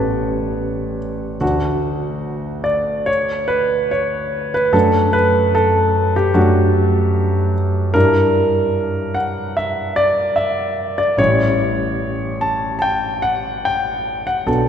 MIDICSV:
0, 0, Header, 1, 2, 480
1, 0, Start_track
1, 0, Key_signature, 2, "major"
1, 0, Tempo, 835655
1, 815, Time_signature, 4, 2, 24, 8
1, 2721, Tempo, 806452
1, 7041, Tempo, 826446
1, 8603, End_track
2, 0, Start_track
2, 0, Title_t, "Grand piano"
2, 0, Program_c, 0, 0
2, 0, Control_c, 0, 64, 127
2, 0, Note_on_c, 0, 33, 43
2, 0, Note_on_c, 0, 59, 36
2, 0, Note_on_c, 0, 61, 33
2, 0, Note_on_c, 0, 67, 34
2, 0, Note_on_c, 0, 69, 54
2, 0, Note_on_c, 0, 71, 56
2, 0, Note_on_c, 0, 73, 66
2, 0, Note_on_c, 0, 74, 65
2, 566, Note_off_c, 0, 69, 0
2, 784, Note_off_c, 0, 33, 0
2, 786, Note_off_c, 0, 59, 0
2, 787, Note_off_c, 0, 61, 0
2, 791, Note_off_c, 0, 67, 0
2, 808, Note_on_c, 0, 38, 43
2, 808, Note_on_c, 0, 66, 60
2, 810, Note_on_c, 0, 57, 36
2, 813, Note_on_c, 0, 62, 35
2, 826, Control_c, 0, 64, 0
2, 827, Note_off_c, 0, 71, 0
2, 827, Note_off_c, 0, 73, 0
2, 830, Note_off_c, 0, 74, 0
2, 908, Control_c, 0, 64, 127
2, 1515, Note_on_c, 0, 74, 65
2, 1523, Note_off_c, 0, 66, 0
2, 1759, Note_on_c, 0, 73, 72
2, 1762, Note_off_c, 0, 74, 0
2, 1776, Control_c, 0, 64, 0
2, 1878, Control_c, 0, 64, 127
2, 1997, Note_on_c, 0, 71, 76
2, 2005, Note_off_c, 0, 73, 0
2, 2244, Note_off_c, 0, 71, 0
2, 2247, Note_on_c, 0, 73, 64
2, 2603, Note_off_c, 0, 73, 0
2, 2609, Note_on_c, 0, 71, 69
2, 2695, Note_off_c, 0, 38, 0
2, 2696, Note_off_c, 0, 57, 0
2, 2698, Note_off_c, 0, 62, 0
2, 2714, Note_on_c, 0, 42, 45
2, 2715, Note_on_c, 0, 57, 35
2, 2716, Note_on_c, 0, 69, 68
2, 2721, Note_on_c, 0, 66, 38
2, 2722, Note_on_c, 0, 62, 34
2, 2724, Note_off_c, 0, 71, 0
2, 2732, Control_c, 0, 64, 0
2, 2817, Control_c, 0, 64, 127
2, 2955, Note_on_c, 0, 71, 73
2, 2961, Note_off_c, 0, 69, 0
2, 3202, Note_off_c, 0, 71, 0
2, 3203, Note_on_c, 0, 69, 76
2, 3564, Note_off_c, 0, 69, 0
2, 3569, Note_on_c, 0, 67, 67
2, 3656, Note_off_c, 0, 42, 0
2, 3656, Note_off_c, 0, 57, 0
2, 3659, Note_off_c, 0, 62, 0
2, 3659, Note_off_c, 0, 66, 0
2, 3674, Note_on_c, 0, 66, 63
2, 3677, Note_on_c, 0, 42, 49
2, 3680, Note_on_c, 0, 57, 39
2, 3680, Note_on_c, 0, 62, 42
2, 3685, Note_off_c, 0, 67, 0
2, 4390, Note_off_c, 0, 66, 0
2, 4606, Note_off_c, 0, 42, 0
2, 4607, Note_off_c, 0, 57, 0
2, 4607, Note_off_c, 0, 62, 0
2, 4625, Note_on_c, 0, 70, 78
2, 4628, Note_on_c, 0, 43, 48
2, 4629, Note_on_c, 0, 55, 36
2, 4632, Note_on_c, 0, 62, 41
2, 4633, Note_on_c, 0, 64, 39
2, 4644, Control_c, 0, 64, 0
2, 4733, Control_c, 0, 64, 127
2, 5344, Note_on_c, 0, 78, 64
2, 5349, Note_off_c, 0, 70, 0
2, 5590, Note_off_c, 0, 78, 0
2, 5595, Note_on_c, 0, 76, 63
2, 5831, Note_on_c, 0, 74, 78
2, 5838, Note_off_c, 0, 76, 0
2, 6067, Note_on_c, 0, 76, 63
2, 6077, Note_off_c, 0, 74, 0
2, 6433, Note_off_c, 0, 76, 0
2, 6437, Note_on_c, 0, 74, 63
2, 6532, Note_off_c, 0, 43, 0
2, 6533, Note_off_c, 0, 55, 0
2, 6534, Note_off_c, 0, 62, 0
2, 6535, Note_off_c, 0, 64, 0
2, 6552, Note_on_c, 0, 33, 44
2, 6557, Note_off_c, 0, 74, 0
2, 6558, Note_on_c, 0, 55, 37
2, 6559, Note_on_c, 0, 73, 74
2, 6560, Note_on_c, 0, 61, 36
2, 6563, Note_on_c, 0, 64, 36
2, 6568, Control_c, 0, 64, 0
2, 6675, Control_c, 0, 64, 127
2, 7282, Note_on_c, 0, 81, 65
2, 7285, Note_off_c, 0, 73, 0
2, 7487, Note_off_c, 0, 81, 0
2, 7502, Note_on_c, 0, 81, 54
2, 7520, Note_on_c, 0, 79, 66
2, 7534, Note_off_c, 0, 81, 0
2, 7754, Note_on_c, 0, 78, 71
2, 7765, Note_off_c, 0, 79, 0
2, 8002, Note_off_c, 0, 78, 0
2, 8003, Note_on_c, 0, 79, 72
2, 8361, Note_on_c, 0, 78, 68
2, 8362, Note_off_c, 0, 79, 0
2, 8457, Note_off_c, 0, 33, 0
2, 8460, Note_off_c, 0, 55, 0
2, 8460, Note_off_c, 0, 61, 0
2, 8462, Note_off_c, 0, 64, 0
2, 8475, Note_on_c, 0, 35, 41
2, 8477, Note_on_c, 0, 69, 64
2, 8479, Note_on_c, 0, 59, 34
2, 8480, Note_on_c, 0, 54, 34
2, 8481, Note_off_c, 0, 78, 0
2, 8488, Note_on_c, 0, 62, 30
2, 8491, Control_c, 0, 64, 0
2, 8586, Control_c, 0, 64, 127
2, 8603, Note_off_c, 0, 35, 0
2, 8603, Note_off_c, 0, 54, 0
2, 8603, Note_off_c, 0, 59, 0
2, 8603, Note_off_c, 0, 62, 0
2, 8603, Note_off_c, 0, 69, 0
2, 8603, End_track
0, 0, End_of_file